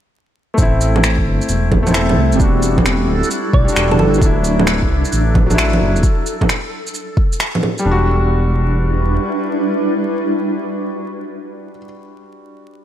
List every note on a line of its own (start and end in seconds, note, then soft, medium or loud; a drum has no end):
0.54 1.81 A3 medium
0.54 7.86 A4 medium
0.58 1.25 A1 loud
0.58 2.40 A3 medium
0.58 1.83 C4 medium
0.58 kick loud
0.58 shaker medium
0.62 1.85 E4 medium
0.76 6.04 E4 medium
0.81 shaker medium
0.88 2.40 C4 loud
0.96 low bongo medium
1.04 finger snap loud
1.04 shaker medium
1.11 2.40 C5 medium
1.19 kick medium
1.26 1.40 G1 loud
1.41 shaker soft
1.49 2.16 E1 medium
1.49 shaker medium
1.72 kick loud
1.72 low bongo medium
1.83 2.36 A3 medium
1.83 2.38 C4 medium
1.87 2.40 E4 medium
1.87 low bongo medium
1.87 shaker medium
1.94 finger snap loud
1.94 shaker medium
2.09 low bongo medium
2.17 2.33 C2 medium
2.32 3.07 E1 medium
2.32 3.63 G3 medium
2.32 shaker soft
2.40 4.22 G3 medium
2.40 3.65 D4 medium
2.40 kick loud
2.40 shaker medium
2.44 3.67 F#4 medium
2.60 6.04 D4 medium
2.60 shaker medium
2.78 kick medium
2.78 low bongo medium
2.86 finger snap loud
2.86 shaker medium
3.08 3.22 D1 loud
3.23 4.96 B4 medium
3.23 shaker soft
3.31 shaker medium
3.53 3.67 B1 medium
3.53 3.78 D5 medium
3.53 kick loud
3.65 4.18 G3 medium
3.65 4.20 D4 medium
3.65 shaker soft
3.72 3.98 E1 medium
3.72 4.22 F#4 medium
3.76 finger snap loud
3.76 shaker medium
3.92 3.96 A4 medium
3.92 low bongo medium
3.99 4.20 G1 medium
3.99 4.09 A4 medium
3.99 low bongo soft
4.14 shaker soft
4.18 4.89 D1 loud
4.18 5.45 F#3 medium
4.18 6.04 F#3 medium
4.18 kick loud
4.18 shaker medium
4.22 5.47 D4 medium
4.22 5.49 E4 loud
4.44 shaker medium
4.59 low bongo medium
4.67 finger snap loud
4.67 shaker medium
4.82 kick medium
4.89 5.04 C2 loud
4.89 6.04 A4 loud
5.05 shaker soft
5.13 5.80 A1 medium
5.13 shaker medium
5.35 kick loud
5.35 low bongo medium
5.46 6.00 F#3 medium
5.46 6.02 D4 medium
5.51 6.04 E4 medium
5.51 low bongo medium
5.51 shaker medium
5.58 finger snap loud
5.58 shaker medium
5.73 low bongo medium
5.81 5.97 F#1 medium
5.95 6.03 D1 medium
5.95 shaker soft
6.03 kick loud
6.03 shaker medium
6.26 shaker medium
6.41 kick medium
6.41 low bongo medium
6.49 finger snap loud
6.49 shaker medium
6.87 shaker soft
6.94 shaker soft
7.17 kick loud
7.33 shaker soft
7.40 finger snap loud
7.40 shaker medium
7.55 low bongo soft
7.63 low bongo soft
7.78 11.71 G3 medium
7.78 shaker soft
7.85 9.18 E1 loud
7.85 11.78 G3 medium
7.85 11.78 D4 medium
7.91 11.87 D4 medium
7.91 11.83 F#4 medium
8.03 11.95 E4 medium
8.07 11.99 B4 medium